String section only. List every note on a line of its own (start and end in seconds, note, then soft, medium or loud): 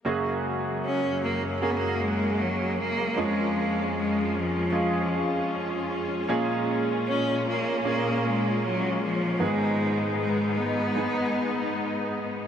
0.06 3.14 F#2 medium
0.06 3.14 F#3 soft
0.06 6.25 G#3 soft
0.06 3.14 A#3 medium
3.18 6.26 F2 medium
3.18 9.37 C#4 medium
3.18 9.37 F4 soft
6.28 9.37 A#2 medium
6.28 12.47 G#3 medium
9.40 12.47 G#2 medium
9.40 12.47 B3 medium
9.40 12.47 D#4 medium